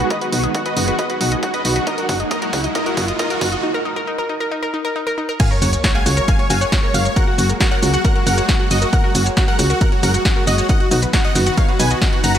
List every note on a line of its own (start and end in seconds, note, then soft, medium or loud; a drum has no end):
0.00 1.83 D#3 medium
0.00 1.84 G#3 medium
0.00 1.83 B3 medium
0.00 riser medium
0.10 0.17 D#4 medium
0.10 0.19 B4 medium
0.10 0.19 D#5 medium
0.10 kick loud
0.10 closed hi-hat medium
0.21 0.30 F#4 medium
0.21 0.32 B4 loud
0.21 closed hi-hat soft
0.32 0.47 B1 loud
0.32 0.40 D#4 medium
0.32 0.41 F#4 medium
0.32 open hi-hat loud
0.44 0.51 D#5 medium
0.44 closed hi-hat medium
0.55 0.62 D#4 medium
0.55 0.63 F#4 medium
0.55 kick loud
0.55 closed hi-hat medium
0.66 0.74 B4 medium
0.66 0.74 D#5 medium
0.66 0.76 F#5 medium
0.66 closed hi-hat medium
0.77 0.91 F#1 loud
0.77 0.84 D#4 medium
0.77 0.85 F#4 medium
0.77 open hi-hat medium
0.88 0.96 F#4 medium
0.88 0.95 B4 medium
0.88 closed hi-hat medium
0.99 1.06 D#4 medium
0.99 1.07 B4 medium
0.99 1.07 D#5 loud
0.99 kick loud
0.99 closed hi-hat medium
1.10 1.18 F#4 medium
1.10 1.20 B4 loud
1.10 closed hi-hat medium
1.21 1.35 B1 loud
1.21 1.28 D#4 medium
1.21 1.29 F#4 medium
1.21 open hi-hat loud
1.32 1.39 D#5 medium
1.32 closed hi-hat medium
1.43 1.50 D#4 medium
1.43 1.51 F#4 medium
1.43 kick loud
1.43 closed hi-hat medium
1.54 1.62 B4 medium
1.54 1.62 D#5 medium
1.54 1.64 F#5 medium
1.54 closed hi-hat medium
1.65 1.79 B1 medium
1.65 1.72 D#4 medium
1.65 1.73 F#4 medium
1.65 open hi-hat medium
1.76 1.84 F#4 medium
1.76 1.83 B4 medium
1.76 closed hi-hat soft
1.87 3.62 F#3 medium
1.87 3.62 G#3 medium
1.87 3.62 A#3 medium
1.87 1.94 D#4 medium
1.87 1.95 A#4 medium
1.87 1.95 D#5 medium
1.87 kick loud
1.87 closed hi-hat medium
1.98 2.06 F#4 medium
1.98 2.08 A#4 loud
1.98 closed hi-hat medium
2.09 2.23 F#1 loud
2.09 2.16 D#4 medium
2.09 2.17 F#4 medium
2.09 kick loud
2.09 open hi-hat loud
2.20 2.27 D#5 medium
2.20 closed hi-hat medium
2.31 2.38 D#4 medium
2.31 2.39 A#4 medium
2.31 2.39 D#5 loud
2.31 kick loud
2.31 closed hi-hat medium
2.42 2.50 F#4 medium
2.42 2.52 A#4 loud
2.42 closed hi-hat medium
2.53 2.68 C#2 loud
2.53 2.60 D#4 medium
2.53 2.61 F#4 medium
2.53 kick loud
2.53 open hi-hat medium
2.64 2.71 D#5 medium
2.64 closed hi-hat medium
2.75 2.82 D#4 medium
2.75 2.84 A#4 medium
2.75 2.84 D#5 loud
2.75 kick loud
2.75 closed hi-hat medium
2.86 2.95 F#4 medium
2.86 2.97 A#4 loud
2.86 closed hi-hat medium
2.97 3.12 F#1 loud
2.97 3.04 D#4 medium
2.97 3.06 F#4 medium
2.97 kick loud
2.97 open hi-hat loud
3.08 3.15 D#5 medium
3.08 closed hi-hat medium
3.19 3.26 D#4 medium
3.19 3.28 A#4 medium
3.19 3.28 D#5 loud
3.19 kick loud
3.19 closed hi-hat medium
3.30 3.39 F#4 medium
3.30 3.41 A#4 loud
3.30 closed hi-hat medium
3.41 3.56 F#1 medium
3.41 3.48 D#4 medium
3.41 3.50 F#4 medium
3.41 kick loud
3.41 open hi-hat medium
3.52 3.59 D#5 medium
3.52 closed hi-hat medium
3.63 3.70 D#4 medium
3.74 3.84 A#4 loud
3.85 3.92 D#4 medium
3.96 4.06 A#4 loud
4.07 4.14 D#4 medium
4.18 4.28 A#4 loud
4.29 4.36 D#4 medium
4.40 4.50 A#4 loud
4.51 4.59 D#4 medium
4.63 4.72 A#4 loud
4.74 4.81 D#4 medium
4.85 4.94 A#4 loud
4.96 5.03 D#4 medium
5.07 5.16 A#4 loud
5.18 5.25 D#4 medium
5.29 5.38 A#4 loud
5.40 12.38 F#3 medium
5.40 10.65 G#3 medium
5.40 10.65 A#3 medium
5.40 5.47 F#4 medium
5.40 5.48 F5 medium
5.40 5.48 G#5 loud
5.40 kick loud
5.40 closed hi-hat medium
5.40 crash loud
5.40 sub drop medium
5.40 shaker soft
5.51 5.61 A#4 loud
5.51 5.59 C#5 medium
5.62 5.76 F#1 loud
5.62 5.69 F#4 medium
5.62 5.70 C#5 medium
5.62 open hi-hat loud
5.62 shaker medium
5.73 5.80 C#5 medium
5.73 closed hi-hat medium
5.73 shaker soft
5.84 5.91 F#4 medium
5.84 5.92 C#5 medium
5.84 kick loud
5.84 snare loud
5.84 closed hi-hat medium
5.84 shaker soft
5.95 6.03 F5 medium
5.95 6.05 F#5 medium
5.95 6.03 G#5 loud
5.95 6.03 G#5 medium
5.95 closed hi-hat soft
6.06 6.21 C#2 loud
6.06 6.13 F#4 medium
6.06 6.14 C#5 medium
6.06 open hi-hat medium
6.06 shaker medium
6.17 6.24 A#4 medium
6.17 6.25 C#5 medium
6.17 closed hi-hat medium
6.17 shaker soft
6.28 6.35 F#4 medium
6.28 6.36 F5 medium
6.28 6.36 G#5 medium
6.28 kick loud
6.28 closed hi-hat medium
6.28 shaker soft
6.39 6.47 C#5 medium
6.39 6.50 C#5 medium
6.39 6.47 C#5 medium
6.39 closed hi-hat soft
6.50 6.65 F#1 loud
6.50 6.57 F#4 loud
6.50 6.58 F5 medium
6.50 6.58 G#5 loud
6.50 open hi-hat loud
6.50 shaker medium
6.61 6.69 C#5 medium
6.61 6.70 C#5 medium
6.61 6.68 F#5 medium
6.61 closed hi-hat medium
6.61 shaker soft
6.72 6.79 F#4 medium
6.72 6.81 C#5 medium
6.72 kick loud
6.72 snare loud
6.72 closed hi-hat medium
6.72 shaker soft
6.83 6.90 A#4 medium
6.83 6.92 C#5 medium
6.94 7.09 F#1 medium
6.94 7.01 F#4 medium
6.94 7.03 C#5 medium
6.94 7.03 F5 loud
6.94 7.03 F5 medium
6.94 open hi-hat medium
6.94 shaker medium
7.05 7.14 C#5 medium
7.05 7.12 C#5 medium
7.05 closed hi-hat medium
7.05 shaker soft
7.16 7.21 F#4 loud
7.16 7.25 A#4 medium
7.16 7.25 F#5 loud
7.16 kick loud
7.16 closed hi-hat medium
7.16 shaker soft
7.27 7.36 F#4 medium
7.27 7.32 F#5 medium
7.38 7.53 F#1 loud
7.38 7.47 F#4 medium
7.38 7.45 F#4 loud
7.38 7.47 F#4 medium
7.38 open hi-hat loud
7.38 shaker medium
7.49 7.56 A#4 medium
7.49 closed hi-hat medium
7.49 shaker soft
7.60 7.69 F#4 medium
7.60 7.65 F#4 loud
7.60 7.69 F#4 medium
7.60 kick loud
7.60 snare loud
7.60 closed hi-hat medium
7.60 shaker soft
7.71 7.80 A#4 medium
7.71 7.82 C#5 medium
7.71 7.80 F#5 medium
7.71 7.80 F#5 loud
7.71 closed hi-hat soft
7.82 7.97 C#2 medium
7.82 7.89 F#4 medium
7.82 7.91 F#4 medium
7.82 open hi-hat medium
7.82 shaker medium
7.93 8.02 F#4 medium
7.93 8.01 F#5 loud
7.93 closed hi-hat medium
7.93 shaker soft
8.04 8.09 F#4 loud
8.04 8.13 A#4 medium
8.04 8.13 F#5 medium
8.04 kick loud
8.04 closed hi-hat medium
8.04 shaker soft
8.15 8.24 F#4 medium
8.15 8.20 A#4 medium
8.15 closed hi-hat soft
8.26 8.41 F#1 loud
8.26 8.34 F#4 medium
8.26 8.35 A#4 medium
8.26 8.35 F#5 medium
8.26 8.35 F#5 loud
8.26 open hi-hat loud
8.26 shaker medium
8.37 8.46 F#4 medium
8.37 8.42 C#5 medium
8.37 closed hi-hat medium
8.37 shaker soft
8.49 8.57 F#4 medium
8.49 8.53 F#4 loud
8.49 kick loud
8.49 snare loud
8.49 closed hi-hat medium
8.49 shaker soft
8.60 8.68 F#4 medium
8.60 8.70 F#5 medium
8.71 8.85 F#1 medium
8.71 8.75 F#4 medium
8.71 8.79 F#4 medium
8.71 8.79 D#5 medium
8.71 open hi-hat medium
8.71 shaker medium
8.82 8.90 F#4 medium
8.82 8.89 A#4 medium
8.82 closed hi-hat medium
8.82 shaker soft
8.93 9.00 F#4 medium
8.93 9.01 A#4 medium
8.93 9.01 F#5 loud
8.93 kick loud
8.93 closed hi-hat medium
8.93 shaker soft
9.04 9.12 F#4 medium
9.04 9.14 A#4 loud
9.15 9.29 F#1 loud
9.15 9.23 F#4 medium
9.15 9.22 F#4 medium
9.15 9.23 F#4 medium
9.15 open hi-hat loud
9.15 shaker medium
9.26 9.33 C#5 medium
9.26 closed hi-hat medium
9.26 shaker soft
9.37 9.45 F#4 medium
9.37 9.44 F#4 medium
9.37 9.45 F#4 medium
9.37 kick loud
9.37 snare loud
9.37 closed hi-hat medium
9.37 shaker soft
9.48 9.56 A#4 medium
9.48 9.58 F#5 medium
9.48 9.56 F#5 medium
9.48 closed hi-hat soft
9.59 9.74 C#2 loud
9.59 9.67 F#4 medium
9.59 9.66 F#4 medium
9.59 9.67 F#4 medium
9.59 open hi-hat medium
9.59 shaker medium
9.70 9.78 F#4 medium
9.70 9.77 A#4 medium
9.70 closed hi-hat medium
9.70 shaker soft
9.81 9.88 F#4 medium
9.81 9.89 A#4 medium
9.81 9.89 F#5 medium
9.81 kick loud
9.81 closed hi-hat medium
9.81 shaker soft
9.92 10.00 F#4 medium
9.92 10.03 C#5 medium
9.92 closed hi-hat soft
10.03 10.18 F#1 loud
10.03 10.10 F#4 loud
10.03 10.11 A#4 medium
10.03 10.11 F#5 loud
10.03 10.11 F#5 medium
10.03 open hi-hat loud
10.03 shaker medium
10.14 10.22 F#4 medium
10.14 10.23 F#4 medium
10.14 10.21 F#5 medium
10.14 closed hi-hat medium
10.14 shaker soft
10.25 10.32 F#4 medium
10.25 10.34 F#4 medium
10.25 kick loud
10.25 snare loud
10.25 closed hi-hat medium
10.25 shaker soft
10.36 10.45 F#4 medium
10.36 10.43 A#4 medium
10.47 10.62 F#1 medium
10.47 10.54 F#4 medium
10.47 10.56 F#4 medium
10.47 10.56 D#5 medium
10.47 open hi-hat medium
10.47 shaker medium
10.58 10.67 F#4 medium
10.58 10.65 C#5 medium
10.58 closed hi-hat soft
10.58 shaker soft
10.69 12.38 D#3 medium
10.69 12.38 B3 medium
10.69 10.73 D#4 loud
10.69 10.78 D#5 medium
10.69 10.78 F#5 loud
10.69 kick loud
10.69 closed hi-hat medium
10.69 shaker soft
10.80 10.89 F#4 medium
10.80 10.85 F#5 medium
10.80 closed hi-hat soft
10.91 11.06 B1 loud
10.91 10.98 D#4 loud
10.91 11.00 F#4 medium
10.91 open hi-hat loud
10.91 shaker medium
11.02 11.09 B4 medium
11.02 closed hi-hat medium
11.02 shaker soft
11.13 11.18 D#4 loud
11.13 11.22 F#4 medium
11.13 kick loud
11.13 snare loud
11.13 closed hi-hat medium
11.13 shaker soft
11.24 11.35 D#5 medium
11.24 11.33 D#5 medium
11.24 11.33 F#5 loud
11.24 closed hi-hat soft
11.35 11.50 F#1 loud
11.35 11.42 D#4 medium
11.35 11.44 F#4 medium
11.35 snare soft
11.35 open hi-hat medium
11.35 shaker medium
11.46 11.55 F#4 medium
11.46 11.53 F#5 loud
11.46 closed hi-hat medium
11.46 shaker soft
11.57 11.62 D#4 loud
11.57 11.66 C#5 medium
11.57 11.66 F5 medium
11.57 kick loud
11.57 closed hi-hat medium
11.57 shaker soft
11.68 11.77 F#4 medium
11.68 11.73 B4 medium
11.68 closed hi-hat soft
11.79 11.94 B1 loud
11.79 11.87 D#4 medium
11.79 11.88 B4 medium
11.79 11.88 G#5 medium
11.79 11.88 G#5 loud
11.79 open hi-hat loud
11.79 shaker medium
11.91 11.99 F#4 medium
11.91 11.95 D#5 medium
11.91 closed hi-hat soft
11.91 shaker soft
12.02 12.06 D#4 loud
12.02 12.10 F#4 medium
12.02 kick loud
12.02 snare loud
12.02 closed hi-hat medium
12.02 shaker soft
12.13 12.21 F#4 medium
12.13 12.23 F#5 medium
12.13 closed hi-hat soft
12.24 12.38 F#1 medium
12.24 12.28 D#4 medium
12.24 12.32 F#5 medium
12.24 12.32 A#5 medium
12.24 open hi-hat medium
12.24 shaker medium
12.35 12.38 F#4 medium
12.35 12.38 B4 medium
12.35 closed hi-hat soft
12.35 shaker soft